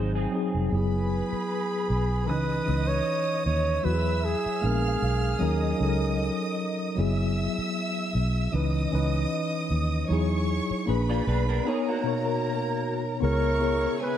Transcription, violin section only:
0.73 B4 B5
2.29 D#5 D#6
3.86 E5 E6
4.64 F5 F6
5.42 D#5 D#6
6.98 E5 E6
8.54 D#5 D#6
10.11 C#5 C#6
10.89 B4 B5
11.68 A#4 A#5
13.24 C#5 C#6
14.01 G#4 G#5

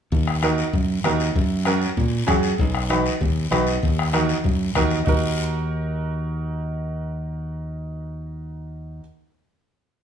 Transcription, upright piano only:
0.43 D#4 F#4 A#4
1.05 D#4 F#4 A#4
1.66 C#4 F#4 A#4
2.27 C#4 F#4 G#4
2.90 D#4 F#4 B4
3.51 D#4 F#4 B4
4.13 D#4 F#4 A#4
4.75 D#4 F#4 A#4
5.05 D#4 F#4 A#4

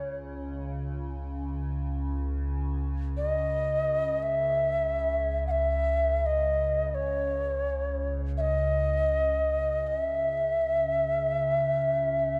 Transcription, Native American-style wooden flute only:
Already playing: C#5
3.17 D#5
4.23 E5
5.47 E5 F#5
6.26 D#5
6.95 C#5
8.38 D#5 E5
9.87 D#5
9.98 E5

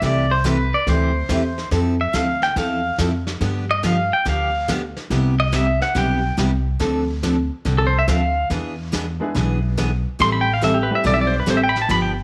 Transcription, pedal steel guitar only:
0.05 D5
0.31 C5
0.47 B4
0.74 D5
0.89 C5
2.01 E5
2.16 F5
2.43 G5
2.58 F5
3.71 D#5
3.86 F5
4.13 G5
4.29 F5
5.40 D#5
5.56 E5
5.82 F#5
5.98 G5
7.78 A4
7.87 C5
7.99 E5
8.09 F5
10.22 C6
10.32 B5
10.41 G5
10.54 F5
10.64 E5
10.74 G4
10.83 B4
10.95 E5
11.07 D5
11.14 E5
11.21 D5
11.27 C5
11.40 B4
11.50 C5
11.57 E5
11.64 G5
11.69 B5
11.82 A5
11.91 B5
12.02 G5

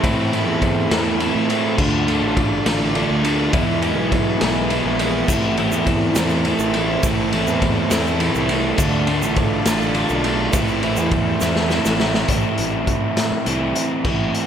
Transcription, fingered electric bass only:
0.04 A2
0.48 E2
0.91 E2
1.35 A2
1.79 D2
2.22 A1
2.66 A1
3.10 D2
3.54 E2
3.97 B1
4.42 B1
4.85 A#1
5.28 A1
5.72 E2
6.16 E2
6.59 A1
7.03 A1
7.48 E2
7.91 E2
8.35 C2
8.79 D2
9.23 A1
9.66 A1
10.10 B1
10.53 A1
10.98 E2
11.41 E2
11.86 A1
12.29 A1
12.59 A1
13.32 A2
13.47 C2
14.05 A1

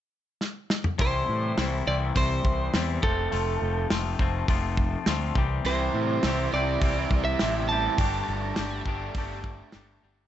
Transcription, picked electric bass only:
0.99 C2
1.29 A2
1.58 C2
1.87 C2
2.16 C2
2.44 C2
2.74 E2
3.03 F1
3.33 F1
3.62 F1
3.90 F1
4.19 F1
4.48 F1
5.07 D2
5.35 C2
5.65 C2
5.94 A2
6.24 C2
6.53 C2
6.81 C2
7.11 C2
7.41 A1
7.98 G1
8.28 G1
8.58 G1
8.86 G1
9.15 G1
9.75 G1
10.03 G1

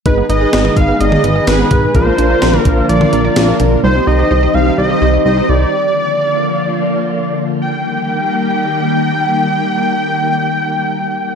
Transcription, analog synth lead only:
0.06 B4
0.29 D#5
0.76 F5
1.00 D#5
1.47 B4
1.95 C5
2.59 A#4
2.89 D5
3.84 C5
4.07 D#5
4.54 F5
4.78 D#5
5.26 D#5
5.49 D5
7.62 G5

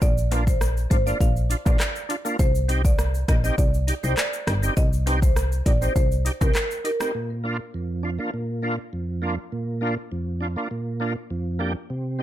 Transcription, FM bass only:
0.02 A#1
0.91 G#1
1.21 A#1
1.66 A#1
2.39 C2
3.28 A#1
3.58 C2
4.04 C2
4.47 G1
4.77 C2
5.66 A#1
5.96 C2
6.41 C2

